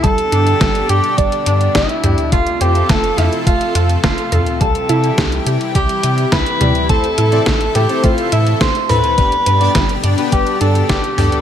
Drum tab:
HH |xxxxxxxxxxxxxxxx|xxxxxxxxxxxxxxxx|xxxxxxxxxxxxxxxx|xxxxxxxxxxxxxxox|
SD |----o-------o---|----o-o-----o---|----o-------o---|----o-o-----o---|
T2 |--------------o-|--------------o-|--------------o-|--------------o-|
BD |o---o---o---o---|o---o---o---o---|o---o---o---o---|o---o---o---o---|

HH |xxxxxxxxxxxxxxox|
SD |----o-------o---|
T2 |--------------o-|
BD |o---o---o---o---|